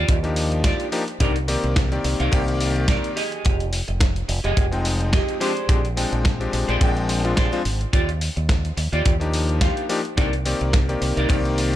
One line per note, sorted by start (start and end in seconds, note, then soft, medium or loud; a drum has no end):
0.00 0.16 F4 loud
0.00 0.16 G4 medium
0.00 0.16 D5 loud
0.08 0.71 D#2 loud
0.08 kick loud
0.08 closed hi-hat medium
0.23 0.89 F3 medium
0.23 0.89 A#3 medium
0.23 0.89 D4 medium
0.23 0.90 D#4 medium
0.23 0.90 G4 medium
0.23 closed hi-hat soft
0.36 muted clean electric guitar stroke soft
0.36 open hi-hat loud
0.52 closed hi-hat soft
0.64 0.86 F4 medium
0.64 0.86 G4 medium
0.64 0.86 D5 medium
0.64 kick loud
0.64 snare loud
0.64 closed hi-hat loud
0.80 closed hi-hat soft
0.92 1.02 F3 medium
0.92 1.02 A#3 medium
0.92 1.02 D4 medium
0.92 1.02 D#4 medium
0.92 1.02 G4 loud
0.92 open hi-hat medium
1.08 muted clean electric guitar stroke soft
1.08 closed hi-hat soft
1.20 1.55 C2 medium
1.20 1.30 D#3 medium
1.20 1.30 A#3 medium
1.20 1.30 C4 medium
1.20 1.30 D4 medium
1.20 1.36 D#4 loud
1.20 1.30 G4 medium
1.20 1.36 A#4 loud
1.20 1.36 D5 loud
1.20 kick loud
1.20 closed hi-hat medium
1.36 closed hi-hat soft
1.48 1.88 D#3 medium
1.48 1.88 A#3 medium
1.48 1.88 C4 medium
1.48 1.88 G4 medium
1.48 1.88 D5 medium
1.48 muted clean electric guitar stroke soft
1.48 open hi-hat loud
1.64 1.97 C2 medium
1.64 muted clean electric guitar stroke medium
1.64 closed hi-hat soft
1.76 muted clean electric guitar stroke soft
1.76 kick loud
1.76 snare loud
1.76 closed hi-hat medium
1.92 2.29 D#3 medium
1.92 2.29 A#3 medium
1.92 2.30 C4 medium
1.92 2.30 G4 medium
1.92 2.30 D5 medium
1.92 closed hi-hat soft
2.04 2.14 C2 medium
2.04 muted clean electric guitar stroke medium
2.04 open hi-hat medium
2.20 2.28 C2 loud
2.20 2.40 D#4 loud
2.20 2.40 A#4 medium
2.20 2.41 F5 loud
2.20 closed hi-hat soft
2.32 2.95 C2 loud
2.32 3.15 D#3 loud
2.32 3.15 A#3 medium
2.32 3.15 C4 medium
2.32 3.16 G4 loud
2.32 3.15 D5 medium
2.32 kick loud
2.32 closed hi-hat medium
2.48 closed hi-hat soft
2.60 muted clean electric guitar stroke soft
2.60 open hi-hat loud
2.76 closed hi-hat soft
2.88 3.10 D#4 medium
2.88 3.10 A#4 medium
2.88 3.11 D5 medium
2.88 kick loud
2.88 snare loud
2.88 closed hi-hat medium
3.04 closed hi-hat soft
3.16 3.62 G4 medium
3.16 3.63 G#4 medium
3.16 3.63 D#5 loud
3.16 open hi-hat medium
3.32 closed hi-hat soft
3.45 3.80 F1 loud
3.45 kick loud
3.45 closed hi-hat medium
3.60 closed hi-hat soft
3.72 muted clean electric guitar stroke soft
3.72 open hi-hat loud
3.88 4.22 F1 medium
3.88 muted clean electric guitar stroke medium
3.88 closed hi-hat soft
4.00 muted clean electric guitar stroke soft
4.00 kick loud
4.00 snare loud
4.00 closed hi-hat medium
4.16 closed hi-hat soft
4.28 4.39 F1 medium
4.28 muted clean electric guitar stroke medium
4.28 open hi-hat loud
4.44 4.52 F1 loud
4.44 4.64 G4 loud
4.44 4.65 G#4 loud
4.44 4.65 D#5 loud
4.44 closed hi-hat soft
4.57 5.20 F1 loud
4.57 kick loud
4.57 closed hi-hat medium
4.71 5.38 F3 medium
4.71 5.38 G#3 medium
4.71 5.38 C4 medium
4.71 5.38 D#4 medium
4.71 5.39 G5 medium
4.71 closed hi-hat soft
4.85 muted clean electric guitar stroke soft
4.85 open hi-hat loud
5.01 closed hi-hat soft
5.13 5.35 G4 medium
5.13 5.35 G#4 medium
5.13 5.35 D#5 medium
5.13 kick loud
5.13 snare loud
5.13 closed hi-hat medium
5.29 closed hi-hat soft
5.40 5.50 F3 medium
5.40 5.50 G#3 medium
5.40 5.50 C4 medium
5.40 5.50 D4 medium
5.40 5.87 G4 medium
5.40 5.51 G4 loud
5.40 5.87 G#4 medium
5.40 5.87 C5 medium
5.40 5.87 D5 medium
5.40 open hi-hat loud
5.57 closed hi-hat soft
5.68 6.04 A#1 medium
5.68 5.78 F3 medium
5.68 5.78 G#3 medium
5.68 5.78 C4 medium
5.68 5.79 D4 medium
5.68 5.79 G4 medium
5.68 kick loud
5.68 closed hi-hat medium
5.85 closed hi-hat soft
5.97 6.37 F3 medium
5.97 6.37 G#3 medium
5.97 6.37 C4 medium
5.97 6.37 D4 medium
5.97 6.37 G5 medium
5.97 muted clean electric guitar stroke soft
5.97 open hi-hat loud
6.12 6.46 A#1 medium
6.12 muted clean electric guitar stroke medium
6.12 closed hi-hat soft
6.24 muted clean electric guitar stroke soft
6.24 kick loud
6.24 snare loud
6.24 closed hi-hat medium
6.40 6.78 F3 medium
6.40 6.78 G#3 medium
6.40 6.78 C4 medium
6.40 6.78 D4 medium
6.40 6.78 G4 medium
6.40 closed hi-hat soft
6.53 6.63 A#1 medium
6.53 muted clean electric guitar stroke medium
6.53 open hi-hat medium
6.68 6.77 A#1 loud
6.68 6.89 G4 medium
6.68 6.89 G#4 loud
6.68 6.89 C5 medium
6.68 6.89 D5 loud
6.68 closed hi-hat soft
6.81 7.37 A#1 medium
6.81 7.21 F3 loud
6.81 7.21 G#3 medium
6.81 7.22 C4 medium
6.81 7.22 D4 medium
6.81 7.22 G5 loud
6.81 kick loud
6.81 closed hi-hat medium
6.97 closed hi-hat soft
7.09 muted clean electric guitar stroke soft
7.09 open hi-hat loud
7.24 7.49 F3 medium
7.24 7.49 G#3 medium
7.24 7.49 C4 medium
7.24 7.49 D4 medium
7.24 7.49 F4 medium
7.24 closed hi-hat soft
7.37 7.47 A#1 loud
7.37 7.59 G4 medium
7.37 7.59 G#4 medium
7.37 7.59 C5 medium
7.37 7.59 D5 medium
7.37 kick loud
7.37 snare loud
7.37 closed hi-hat medium
7.52 7.60 F3 loud
7.52 7.60 G#3 medium
7.52 7.60 C4 medium
7.52 7.60 D4 medium
7.52 7.61 F4 loud
7.52 closed hi-hat soft
7.65 7.84 G#1 loud
7.65 open hi-hat medium
7.80 muted clean electric guitar stroke soft
7.80 closed hi-hat soft
7.93 8.28 D#2 medium
7.93 8.09 F4 loud
7.93 8.09 G4 loud
7.93 8.09 D5 loud
7.93 kick loud
7.93 closed hi-hat medium
8.09 closed hi-hat soft
8.21 muted clean electric guitar stroke soft
8.21 open hi-hat loud
8.36 8.70 D#2 medium
8.36 muted clean electric guitar stroke medium
8.36 closed hi-hat soft
8.49 muted clean electric guitar stroke soft
8.49 kick loud
8.49 snare loud
8.49 closed hi-hat medium
8.65 closed hi-hat soft
8.77 8.87 D#2 medium
8.77 muted clean electric guitar stroke medium
8.77 open hi-hat medium
8.92 9.01 D#2 loud
8.92 9.13 F4 loud
8.92 9.13 G4 loud
8.92 9.13 D5 loud
8.92 closed hi-hat soft
9.05 9.68 D#2 medium
9.05 kick loud
9.05 closed hi-hat medium
9.20 9.86 F3 medium
9.20 9.86 A#3 medium
9.20 9.86 D4 medium
9.20 9.87 D#4 medium
9.20 9.87 G4 medium
9.20 closed hi-hat soft
9.33 muted clean electric guitar stroke soft
9.33 open hi-hat loud
9.49 closed hi-hat soft
9.61 9.83 F4 medium
9.61 9.83 G4 medium
9.61 9.83 F5 medium
9.61 kick loud
9.61 snare loud
9.61 closed hi-hat medium
9.77 closed hi-hat soft
9.89 9.99 F3 medium
9.89 9.99 A#3 medium
9.89 9.99 D4 medium
9.89 9.99 D#4 medium
9.89 9.99 G4 loud
9.89 open hi-hat medium
10.05 muted clean electric guitar stroke soft
10.05 closed hi-hat soft
10.17 10.52 C2 loud
10.17 10.27 D#3 medium
10.17 10.27 A#3 medium
10.17 10.27 C4 medium
10.17 10.27 D4 medium
10.17 10.33 D#4 loud
10.17 10.27 G4 medium
10.17 10.33 A#4 medium
10.17 10.33 D5 loud
10.17 kick loud
10.17 closed hi-hat medium
10.33 closed hi-hat soft
10.45 10.85 D#3 medium
10.45 10.85 A#3 medium
10.45 10.86 C4 medium
10.45 10.86 G4 medium
10.45 10.86 D5 medium
10.45 muted clean electric guitar stroke soft
10.45 open hi-hat loud
10.61 10.95 C2 medium
10.61 muted clean electric guitar stroke medium
10.61 closed hi-hat soft
10.73 muted clean electric guitar stroke soft
10.73 kick loud
10.73 snare loud
10.73 closed hi-hat medium
10.89 11.26 D#3 medium
10.89 11.27 A#3 medium
10.89 11.27 C4 medium
10.89 11.27 G4 medium
10.89 11.27 D5 medium
10.89 closed hi-hat soft
11.02 11.12 C2 medium
11.02 muted clean electric guitar stroke medium
11.02 open hi-hat medium
11.17 11.25 C2 loud
11.17 11.37 D#4 loud
11.17 11.38 A#4 medium
11.17 11.38 D5 loud
11.17 closed hi-hat soft
11.29 11.76 C2 loud
11.29 11.76 D#3 loud
11.29 11.76 A#3 medium
11.29 11.76 C4 loud
11.29 11.76 G4 loud
11.29 11.76 D5 medium
11.29 kick loud
11.29 closed hi-hat medium
11.45 closed hi-hat soft
11.57 muted clean electric guitar stroke soft
11.57 open hi-hat loud